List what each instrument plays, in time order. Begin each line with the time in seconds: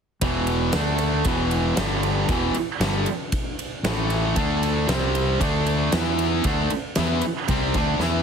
0.21 fingered electric bass E1, distorted electric guitar E2 B2 E3, kick, ride
0.47 ride
0.73 fingered electric bass D2, distorted electric guitar D3 A3 D4, snare, ride
0.98 ride
1.25 fingered electric bass E1, distorted electric guitar E2 B2 E3, kick, ride
1.51 ride
1.77 fingered electric bass G1, distorted electric guitar G2 D3 G3, snare, ride
2.03 ride
2.29 fingered electric bass E1, distorted electric guitar E2 B2 E3, kick, ride
2.54 muted fingered electric bass stroke, muted distorted electric guitar stroke, ride
2.80 fingered electric bass G1, distorted electric guitar G2 D3 G3, snare, ride
3.06 ride
3.32 kick, ride
3.59 ride
3.83 fingered electric bass A1, distorted electric guitar A2 E3 A3, snare, ride
4.10 ride
4.36 fingered electric bass D2, distorted electric guitar D3 A3 D4, kick, ride
4.63 ride
4.87 fingered electric bass C2, distorted electric guitar C3 G3 C4, snare, ride
5.15 ride
5.40 fingered electric bass D2, distorted electric guitar D3 A3 D4, kick, ride
5.67 ride
5.92 fingered electric bass E2, distorted electric guitar E3 B3 E4, snare, ride
6.19 ride
6.44 fingered electric bass D2, distorted electric guitar D3 A3 D4, kick, ride
6.70 muted distorted electric guitar stroke, muted fingered electric bass stroke, ride
6.95 fingered electric bass E2, distorted electric guitar E3, snare, ride
7.00 distorted electric guitar B3 E4
7.21 ride
7.48 fingered electric bass C2, distorted electric guitar C3 G3 C4, kick, ride
7.74 fingered electric bass D2, distorted electric guitar D3 A3 D4, kick, ride
7.99 fingered electric bass E2, distorted electric guitar E3 B3, snare
8.03 distorted electric guitar E4